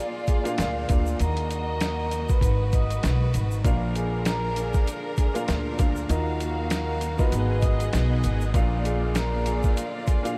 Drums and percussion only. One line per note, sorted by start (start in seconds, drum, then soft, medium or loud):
0.27 kick medium
0.27 closed hi-hat medium
0.27 shaker soft
0.45 closed hi-hat soft
0.45 shaker medium
0.58 cross-stick medium
0.58 snare loud
0.58 closed hi-hat medium
0.58 shaker medium
0.89 kick medium
0.89 closed hi-hat medium
0.89 shaker medium
1.06 shaker medium
1.19 closed hi-hat medium
1.19 shaker medium
1.37 closed hi-hat medium
1.50 closed hi-hat medium
1.50 shaker soft
1.81 cross-stick medium
1.81 snare loud
1.81 closed hi-hat loud
1.81 shaker medium
2.11 closed hi-hat medium
2.11 shaker medium
2.29 kick loud
2.29 shaker medium
2.41 kick medium
2.41 closed hi-hat medium
2.41 shaker medium
2.72 kick medium
2.72 closed hi-hat medium
2.72 shaker soft
2.90 closed hi-hat soft
2.90 shaker medium
3.03 cross-stick medium
3.03 snare loud
3.03 closed hi-hat medium
3.03 shaker medium
3.34 closed hi-hat medium
3.34 shaker medium
3.51 shaker soft
3.65 kick loud
3.65 closed hi-hat medium
3.65 shaker medium
3.96 closed hi-hat medium
3.96 shaker soft
4.25 cross-stick medium
4.25 snare loud
4.25 closed hi-hat loud
4.25 shaker medium
4.56 closed hi-hat medium
4.56 shaker medium
4.74 kick medium
4.74 shaker medium
4.87 closed hi-hat medium
4.87 shaker medium
5.17 kick medium
5.17 closed hi-hat medium
5.17 shaker soft
5.35 closed hi-hat soft
5.35 shaker medium
5.48 cross-stick medium
5.48 snare loud
5.48 closed hi-hat medium
5.48 shaker medium
5.79 kick medium
5.79 closed hi-hat medium
5.79 shaker medium
5.96 shaker medium
6.09 closed hi-hat medium
6.09 shaker medium
6.40 closed hi-hat medium
6.40 shaker soft
6.70 cross-stick medium
6.70 snare loud
6.70 closed hi-hat loud
6.70 shaker medium
7.01 closed hi-hat medium
7.01 shaker medium
7.19 kick loud
7.19 shaker medium
7.32 closed hi-hat medium
7.32 shaker medium
7.62 kick medium
7.62 closed hi-hat medium
7.62 shaker soft
7.80 closed hi-hat soft
7.80 shaker medium
7.93 cross-stick medium
7.93 snare loud
7.93 closed hi-hat medium
7.93 shaker medium
8.24 closed hi-hat medium
8.24 shaker medium
8.41 shaker medium
8.54 kick loud
8.54 closed hi-hat medium
8.54 shaker medium
8.85 closed hi-hat medium
8.85 shaker soft
9.15 cross-stick medium
9.15 snare loud
9.15 closed hi-hat loud
9.15 shaker medium
9.46 closed hi-hat medium
9.46 shaker medium
9.63 kick medium
9.63 shaker medium
9.77 closed hi-hat medium
9.77 shaker medium
10.07 kick medium
10.07 closed hi-hat medium
10.07 shaker soft
10.25 closed hi-hat soft
10.25 shaker medium